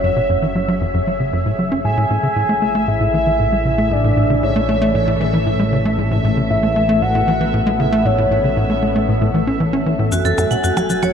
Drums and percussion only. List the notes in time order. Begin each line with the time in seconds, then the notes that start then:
10.12 cabasa
10.25 cabasa
10.38 cabasa, percussion blips
10.51 cabasa
10.64 cabasa
10.77 cabasa, percussion blips
10.90 cabasa
11.03 cabasa, percussion blips